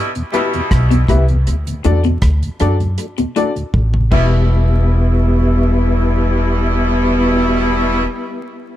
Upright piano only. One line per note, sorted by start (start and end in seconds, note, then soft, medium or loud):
0.33 0.47 E4 medium
0.33 0.47 G4 medium
0.33 0.47 B4 medium
0.33 0.47 E5 medium
1.09 1.22 E4 medium
1.09 1.22 G4 medium
1.09 1.23 B4 medium
1.09 1.23 E5 medium
1.85 1.98 D4 medium
1.85 1.98 F#4 medium
1.85 1.98 A4 medium
1.85 1.99 D5 loud
2.60 2.74 D4 medium
2.60 2.74 F#4 medium
2.60 2.74 A4 medium
2.60 2.74 D5 loud
3.36 3.49 D4 medium
3.36 3.50 F#4 medium
3.36 3.50 A4 medium
3.36 3.50 D5 loud
4.12 8.04 E4 medium
4.12 8.04 G4 medium
4.12 8.04 B4 medium
4.12 8.05 E5 medium